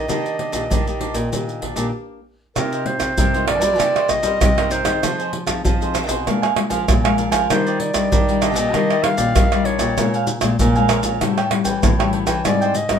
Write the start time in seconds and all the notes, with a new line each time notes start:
Already playing: D#5
0.08 D#3 A#3 D4 G4 D5 D#5, pandeiro, maracas, surdo
0.26 pandeiro, maracas
0.38 D4 G4 D5 D#5, pandeiro
0.52 A#2 A#3 D4 G4 D5 D#5, pandeiro, maracas, surdo
0.70 A#2 D#3 D4 G4 D5 D#5, pandeiro, maracas, surdo
0.87 A#3 G4 D5 D#5, pandeiro, maracas
0.99 D4 G4 D5 D#5, pandeiro
1.14 A#2 G4 D#5, pandeiro, maracas, surdo
1.32 A#2 D#3 A#3 D4 G4, pandeiro, maracas, surdo
1.49 pandeiro, maracas
1.61 D4 G4 D5 D#5, pandeiro, surdo
1.75 A#2 A#3 D4 G4 D5 D#5, pandeiro, maracas, surdo
2.55 C3 A#3 D#4 F4 A#4 C5 D#5, pandeiro, tamborim, maracas, surdo
2.72 A#4 C5 D#5, pandeiro, maracas
2.85 A#3 D#4 F4 C5, muted cavaquinho stroke, pandeiro
2.99 C3, pandeiro, tamborim, maracas, surdo
3.17 G2 C3 D#4 A#4 C5 D#5, pandeiro, maracas, surdo
3.33 A#3 D#4 F4 A#4 C5 D#5, pandeiro, maracas
3.47 D#4 A#4 C5 D5 D#5, pandeiro, tamborim
3.61 G3 A#3 D#4 F4 A#4 C5 D#5, pandeiro, maracas, surdo
3.79 C3 A#3 D#4 F4 A#4 C5 D#5, pandeiro, tamborim, maracas, surdo
3.95 A#4 C5 D#5, pandeiro, tamborim, maracas
4.08 A#3 D#4 F4 D#5, muted cavaquinho stroke, pandeiro, tamborim, maracas, surdo
4.23 G3 A#4 C5 D#5, pandeiro, maracas, surdo
4.41 G2 C3, pandeiro, tamborim, maracas, surdo
4.57 A#3 D#4 F4 A#4 C5 D#5, pandeiro, tamborim, maracas
4.70 D#4 A#4 C5 D#5, pandeiro, maracas
4.84 D#3 C4 D#4 G#4 A#4 C5 D#5, pandeiro, tamborim, maracas, surdo
5.02 F3 F4 G#4 C5 D#5, pandeiro, tamborim, maracas, surdo
5.18 G#4 C5 D#5, pandeiro, maracas
5.32 muted cavaquinho stroke, pandeiro
5.46 F3 C4 D#4 G#4, pandeiro, tamborim, maracas, surdo
5.64 C3 F3 F4 G#4 C5 D#5, pandeiro, maracas, surdo
5.81 C4 D#4 G#4 C5 D#5, pandeiro, maracas
5.93 F4 G#4 C5 D#5, pandeiro, tamborim, maracas
6.08 B2 G#4 C5 D#5, pandeiro, maracas, surdo
6.26 A#2 G#3 D4 F4 A#4 F5 G#5, pandeiro, tamborim, maracas, surdo
6.42 A#4 F5 G#5, pandeiro, tamborim, maracas
6.55 G#3 D4 F4, muted cavaquinho stroke, pandeiro, tamborim
6.70 F3 A#4 F5 G#5, pandeiro, maracas, surdo
6.88 A#2 F3, pandeiro, tamborim, maracas, surdo
7.04 G#3 D4 F4 A#4 F5 G#5, pandeiro, tamborim, maracas
7.17 D4 A#4 F5 G#5, pandeiro, maracas
7.31 F3 A#4 F5 G#5, pandeiro, tamborim, maracas, surdo
7.50 D#3 G3 D4 F4 G4 C5 D5 D#5, pandeiro, tamborim, maracas, surdo
7.66 G4 D5 D#5, pandeiro, maracas
7.79 D5, muted cavaquinho stroke, pandeiro
7.94 D#3 G3 D4 F4, pandeiro, tamborim, maracas, surdo
8.11 A#2 D#3 D4 G4 D5 D#5, pandeiro, maracas, surdo
8.28 G3 D4 F4 G4 D5 D#5, pandeiro, maracas
8.41 D4 G4 D5 D#5, pandeiro, tamborim, maracas
8.55 A#2 G4 D5 D#5, pandeiro, maracas, surdo
8.73 D#3 G3 D4 F4 G4 D5 D#5, pandeiro, tamborim, maracas, surdo
8.90 G4 D5 D#5, pandeiro, tamborim, maracas
9.03 G3 D4 F4 F5, pandeiro, tamborim
9.17 A#2 G4 D5 D#5, pandeiro, maracas, surdo
9.35 A#2 D#3, pandeiro, tamborim, maracas, surdo
9.52 G3 D4 F4 G4 D5 D#5, pandeiro, tamborim, maracas
9.65 D4 G4 C#5 D5 D#5, pandeiro
9.79 A#2 G4 D5 D#5, pandeiro, tamborim, maracas, surdo
9.98 A#2 G#3 C#4 F4 A#4 C#5 F5 G#5, pandeiro, tamborim, maracas, surdo
10.14 C#5 F5 G#5, pandeiro, maracas
10.27 muted cavaquinho stroke, pandeiro, maracas
10.41 A#2 G#3 C#4 F4, pandeiro, tamborim, maracas, surdo
10.59 A#2 F3 A#4 C#5 F5 G#5, pandeiro, maracas, surdo
10.76 G#3 C#4 F4 C#5 F5 G#5, pandeiro, maracas
10.89 A#4 C#5 F5 G#5, pandeiro, tamborim, maracas
11.03 A#2 C#5 F5 G#5, pandeiro, maracas, surdo
11.21 A2 G3 C#4 E4 F#4 A4 C#5 G5, pandeiro, tamborim, maracas, surdo
11.38 A4 C#5 G5, pandeiro, tamborim, maracas
11.51 G3 C#4 F#4, muted cavaquinho stroke, pandeiro, tamborim
11.64 E3 A4 C#5 G5, pandeiro, maracas, surdo
11.83 A2 E3, pandeiro, tamborim, maracas, surdo
11.99 G3 C#4 F#4 A4 C#5 G5, pandeiro, tamborim, maracas
12.12 E4 A4 C#5 G5, pandeiro
12.27 E3 A4 C#5 G5, pandeiro, tamborim, maracas, surdo
12.45 G#2 G3 C4 D#4 G#4 C5 D5 D#5 G5, pandeiro, tamborim, maracas, surdo
12.61 C5 D#5 G5, pandeiro, maracas
12.75 D#5, muted cavaquinho stroke, pandeiro, maracas
12.89 G#2 G3 C4 D#4, pandeiro, tamborim, maracas, surdo